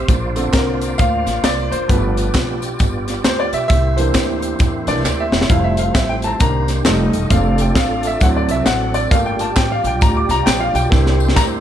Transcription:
Already playing: french horn section C5, tonewheel organ C5
0.08 upright bass A#1, french horn section A#3 D4, tonewheel organ A#3 F4 D5, kick, closed hi-hat, tambourine
0.36 grand piano D3 C4 A4, closed hi-hat, tambourine
0.53 upright bass C2, grand piano A#4, kick, snare, clap, closed hi-hat, tambourine
0.81 closed hi-hat, tambourine
0.98 upright bass D2, grand piano F5, kick, closed hi-hat, tambourine
1.26 upright bass A1, snare, closed hi-hat, tambourine
1.43 upright bass C2, grand piano D5, snare, clap, closed hi-hat, tambourine
1.71 upright bass F#1, grand piano C5, closed hi-hat, tambourine
1.88 upright bass G1, grand piano F3 A3 B3 B4, tonewheel organ B3 G4, french horn section B3 G4, kick, closed hi-hat, tambourine
2.17 closed hi-hat, tambourine
2.34 upright bass B1, kick, snare, clap, closed hi-hat, tambourine
2.62 closed hi-hat, tambourine
2.79 upright bass G1, kick, closed hi-hat, tambourine
3.08 snare, closed hi-hat, tambourine
3.24 upright bass D2, grand piano C5, snare, clap, closed hi-hat, tambourine
3.39 grand piano C#5 D5
3.52 upright bass B1, grand piano E5, closed hi-hat, tambourine
3.68 upright bass C2, tonewheel organ A#3 E4 C5, french horn section A#3 C4 E5, grand piano E5, kick, closed hi-hat, tambourine
3.97 grand piano E3 A#3 D4 C5, closed hi-hat, tambourine
4.14 kick, snare, clap, closed hi-hat, tambourine
4.42 closed hi-hat, tambourine
4.59 upright bass E2, kick, snare, closed hi-hat, tambourine
4.87 upright bass C2, grand piano E3 A#3 D4 D5, snare, closed hi-hat, tambourine
5.04 upright bass D2, snare, clap, tambourine
5.20 grand piano E5
5.32 upright bass E1, snare, tambourine
5.41 snare
5.49 upright bass F1, french horn section F3 A3, tonewheel organ F3 A3, grand piano G3 A3 E4 F5, kick, closed hi-hat, tambourine
5.64 grand piano E5
5.77 grand piano F5, closed hi-hat, tambourine
5.94 upright bass A1, grand piano E5, kick, snare, clap, closed hi-hat, tambourine
6.09 grand piano G5
6.22 grand piano A5, closed hi-hat, tambourine
6.27 grand piano A#5
6.39 upright bass C2, french horn section D#3 A#3 G4, grand piano D#3 A#3 D4 A#5, tonewheel organ D#3 A#3 G4, kick, snare, closed hi-hat, tambourine
6.68 snare, closed hi-hat, tambourine
6.85 upright bass F1, grand piano G3 A3 D#4, french horn section A3 F4, tonewheel organ A3 F4 G4 D#5, snare, clap, closed hi-hat, tambourine
7.13 upright bass E1, closed hi-hat, tambourine
7.30 upright bass F1, grand piano A3 C4 D4 F5, tonewheel organ A3 A4 D5, french horn section A3 D4 A4, kick, closed hi-hat, tambourine
7.58 grand piano G5, closed hi-hat, tambourine
7.75 grand piano F5, kick, snare, clap, closed hi-hat, tambourine
8.03 grand piano E5, closed hi-hat, tambourine
8.20 upright bass D2, grand piano F#3 C4 E4 F#5, french horn section C4 F#4, tonewheel organ C4 F#4, kick, snare, closed hi-hat, tambourine
8.37 grand piano D5
8.48 upright bass C2, grand piano E5, closed hi-hat, tambourine
8.66 upright bass A1, grand piano F#5, snare, clap, closed hi-hat, tambourine
8.94 grand piano D5, closed hi-hat, tambourine
9.11 upright bass G1, french horn section G3 F4 G4, tonewheel organ G3 F4 G4 D5, grand piano A3 A#3 F4 F5, kick, closed hi-hat, tambourine
9.26 grand piano G5
9.39 grand piano A5, closed hi-hat, tambourine
9.56 upright bass A1, grand piano G5, kick, snare, clap, closed hi-hat, tambourine
9.72 grand piano F5
9.84 upright bass A#1, grand piano G5, closed hi-hat, tambourine
10.01 upright bass D2, grand piano A#5, kick, snare, closed hi-hat, tambourine
10.17 grand piano D6
10.29 upright bass C2, grand piano A#5, snare, closed hi-hat, tambourine
10.46 upright bass A#1, grand piano G5, snare, clap, closed hi-hat, tambourine
10.61 grand piano F5
10.74 upright bass B1, grand piano G5, closed hi-hat, tambourine
10.90 upright bass C2, grand piano A#3 D4 E4, french horn section C4 E4, tonewheel organ E4 G4 C5, kick, snare, tambourine
11.06 snare
11.20 tambourine
11.28 snare
11.36 upright bass D2, grand piano A#5, kick, snare, clap, tambourine

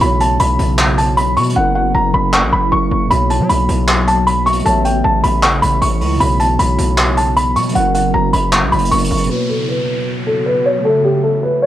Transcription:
Already playing: tine electric piano B2, ambient pad C#3
0.00 808-style bass B1, tine electric piano B3 F#4, felt piano B5, closed hi-hat
0.06 tine electric piano C#5
0.20 felt piano A5, closed hi-hat
0.40 808-style bass B1, felt piano B5, closed hi-hat
0.59 808-style bass B1, closed hi-hat
0.78 clap, closed hi-hat
0.98 felt piano A5, closed hi-hat
1.17 felt piano B5, closed hi-hat
1.36 808-style bass B2, felt piano C#6, closed hi-hat
1.43 closed hi-hat
1.49 tine electric piano F#3, closed hi-hat
1.54 808-style bass F#1, tine electric piano C#4 E4, felt piano F#5
1.61 tine electric piano A#4
1.75 felt piano F#5
1.94 808-style bass F#1, felt piano A#5
2.14 808-style bass F#1, felt piano B5
2.33 felt piano C#6, clap
2.43 808-style bass A#1
2.53 808-style bass F#1, felt piano B5
2.69 808-style bass F#1, tine electric piano F#3 C#4 E4, felt piano C#6
2.74 tine electric piano A#4
2.91 808-style bass F#1
3.06 tine electric piano B2 B3
3.10 808-style bass B1, tine electric piano F#4, felt piano B5, closed hi-hat
3.16 tine electric piano C#5
3.30 felt piano A5, closed hi-hat
3.40 808-style bass F#3
3.49 808-style bass B1, felt piano B5, closed hi-hat
3.69 808-style bass B1, closed hi-hat
3.88 clap, closed hi-hat
4.07 felt piano A5, closed hi-hat
4.27 felt piano B5, closed hi-hat
4.46 felt piano C#6, closed hi-hat
4.53 closed hi-hat
4.59 tine electric piano A3, closed hi-hat
4.64 808-style bass A1, tine electric piano A4 C#5, felt piano A5, closed hi-hat
4.70 tine electric piano E5
4.85 felt piano G5, closed hi-hat
5.04 808-style bass A1, felt piano A5
5.24 808-style bass A1, felt piano B5, closed hi-hat
5.43 felt piano C#6, clap, closed hi-hat
5.62 808-style bass A1, felt piano B5, closed hi-hat
5.82 808-style bass A1, felt piano C#6, closed hi-hat
6.01 808-style bass C#2, open hi-hat
6.16 tine electric piano B2 B3
6.20 808-style bass B1, ambient pad C#3 F#3, tine electric piano F#4, felt piano B5, closed hi-hat
6.25 tine electric piano C#5
6.40 felt piano A5, closed hi-hat
6.59 808-style bass B1, felt piano B5, closed hi-hat
6.78 808-style bass B1, closed hi-hat
6.98 clap, closed hi-hat
7.17 felt piano A5, closed hi-hat
7.37 felt piano B5, closed hi-hat
7.56 808-style bass B2, felt piano C#6, closed hi-hat
7.62 closed hi-hat
7.69 tine electric piano F#3, closed hi-hat
7.74 808-style bass F#1, tine electric piano C#4 E4, felt piano F#5, closed hi-hat
7.80 tine electric piano A#4
7.94 felt piano F#5, closed hi-hat
8.14 808-style bass F#1, felt piano A#5
8.33 808-style bass F#1, felt piano B5, closed hi-hat
8.53 felt piano C#6, clap, closed hi-hat
8.62 808-style bass A#1
8.72 808-style bass F#1, felt piano B5, closed hi-hat
8.78 closed hi-hat
8.85 tine electric piano F#3, closed hi-hat
8.90 808-style bass F#1, tine electric piano C#4 E4 A#4, felt piano C#6, closed hi-hat
8.98 closed hi-hat
9.04 closed hi-hat
9.11 808-style bass F#1, closed hi-hat, open hi-hat
9.17 closed hi-hat
9.24 tine electric piano B2, closed hi-hat
9.28 ambient pad C#3, tine electric piano B3 F#4, felt piano B4, downlifter
9.35 tine electric piano C#5
9.49 felt piano A4
9.69 felt piano B4
10.27 felt piano A4
10.46 felt piano B4
10.66 felt piano C#5
10.80 tine electric piano A3 A4
10.85 felt piano A4, tine electric piano C#5
10.90 tine electric piano E5
11.04 felt piano G4
11.24 felt piano A4
11.43 felt piano B4
11.62 felt piano C#5

